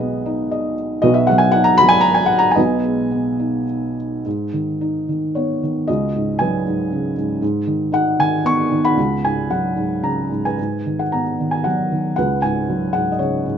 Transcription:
felt piano
Already playing: B1 B2 G#3 G#4 B4 D#5
0.00 B3
0.26 D#4
0.51 D#5
1.02 B1 B2 F#4 B4 D#5
1.14 E5
1.27 F#3 F#5
1.38 G#5
1.52 D#4 F#5
1.64 A#5
1.78 F#3 B5
1.89 G#5
2.01 A#5
2.14 G#5
2.26 F#5
2.39 A#5
2.51 G#5
2.55 B1 B2 B4 D#5
2.84 G#3
3.11 B3
3.39 D#4
4.25 G#2
4.53 D#3
4.81 D#4
5.09 D#3
5.35 B3 C#5
5.63 D#3
5.88 C#2 F#4 D#5
6.16 G#2
6.39 F#3 B4 G#5
6.67 G#2
6.92 C#3
7.18 G#2
7.42 G#2
7.67 D#3
7.92 D#4 F#5
8.19 D#3 G#5
8.45 B3 C#6
8.71 D#3
8.85 F#5 B5
8.97 C#2
9.24 G#2 G#5
9.50 F#3 F#5
9.76 G#2
10.03 C#3 A#5
10.31 G#2
10.45 B4 G#5
10.59 G#2
10.86 D#3
10.99 F#5
11.12 B3 A#5
11.40 D#3
11.51 G#5
11.64 F#3 F#5
11.92 D#3
12.16 C#2 B4 F#5
12.42 G#2 G#5
12.70 F#3
12.93 G#2 F#5
13.12 D#5
13.19 C#3 C#5
13.46 G#2

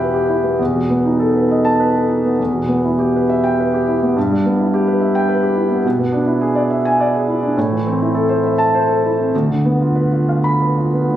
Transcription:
grand piano
Already playing: E2 B2 B3 E4 G4 E5 G5
0.00 B4
0.14 G4
0.29 E4
0.44 B3
0.59 E2
0.76 B2
0.90 B3
1.05 D#4
1.20 A4
1.36 B4
1.51 D#5
1.65 A5
1.80 B4
1.95 A4
2.08 D#4
2.25 B3
2.39 E2
2.53 B2
2.69 B3
2.84 E4
2.99 G4
3.16 B4
3.29 E5
3.44 G5
3.60 B4
3.74 G4
3.88 E4
4.02 B3
4.16 G2
4.31 G3
4.46 B3
4.59 E4
4.74 G4
4.88 B4
5.01 E5
5.15 G5
5.29 B4
5.43 G4
5.56 E4
5.71 B3
5.85 B2
5.99 B3
6.12 D4
6.26 E4
6.41 G#4
6.55 D5
6.71 E5
6.85 G#5
7.00 D5
7.14 G#4
7.28 E4
7.43 D4
7.57 A2
7.72 E3
7.87 C4
8.01 E4
8.15 A4
8.29 C5
8.44 E5
8.58 A5
8.75 C5
8.89 A4
9.05 E4
9.19 C4
9.35 D2
9.50 D3
9.65 B3
9.81 F4
9.95 B4
10.13 F4
10.29 F5
10.44 B5
10.62 B4
10.78 F4
10.94 B3
11.11 D3

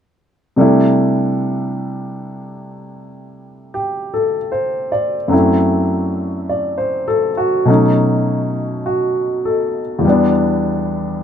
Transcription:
grand piano
0.56 C3 G3 A3 D4
0.61 E4
3.74 G4
4.14 A4
4.52 C5
4.92 D5
5.28 F#2 F#3 A3
5.32 C4 E4
6.49 D5
6.78 C5
7.08 A4
7.37 F#4
7.65 B2 F#3 A3 C#4
7.70 D#4
8.86 F#4
9.45 A4
9.99 E2 E3
10.04 G3 B3
10.09 D4

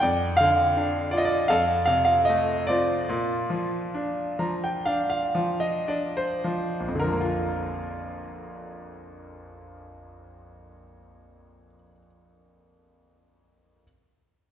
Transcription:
grand piano
0.00 F2 D5 G5
0.37 D3 F5
0.77 D4
1.11 F4 D5
1.17 D#5
1.25 D5
1.48 F2 A4 F5
1.85 C3 F5
2.05 F5
2.25 D#5
2.29 A3
2.67 C4 F4 D5
3.09 A#2
3.50 F3
3.94 D4
4.39 F3 A#5
4.64 G5
4.85 D4 F5
5.10 F5
5.35 F3
5.60 D#5
5.88 D4 D5
6.17 C5
6.44 F3
6.80 A#1
6.88 F2
6.95 D3
7.00 A#4
7.04 F3
7.12 A#3
7.20 F4

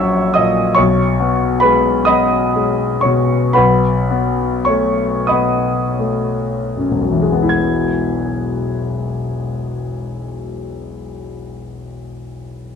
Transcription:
grand piano
Already playing: A#1 F#3 C#4 C#5 D#5 E5 C#6 D#6 E6
0.34 A#2 D#5 D#6
0.75 B1 C#5 C#6
1.20 B3
1.60 G#3 B4 B5
2.05 B3 D#5 B5 D#6
2.56 G#3
3.01 B2 C#5 C#6
3.53 B1 B4 F#5 B5
4.11 B3
4.65 A3 C#5 C#6
5.27 B3 D#5 B5 D#6
5.99 A3
6.77 F#2
6.91 E1
7.01 B1
7.11 E3
7.22 G#3
7.32 B3
7.42 E4
7.49 G#6

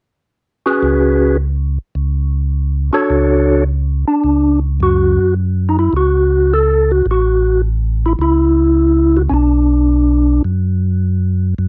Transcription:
tonewheel organ
0.66 C#4 F#4 G#4 B4
0.83 C#2
1.95 C#2
2.93 D4 F#4 A4 C#5
3.10 C#2
4.08 D4
4.24 C#2
4.80 F#2 F#4
5.69 D#4
5.79 E4
5.93 C#2 F#4
6.54 A4
6.91 F#4
7.06 A1
7.11 F#4
8.06 E4
8.19 C#2 E4
9.17 F#4
9.29 B1 C#4
9.34 D4
10.44 F#2
11.58 F#2

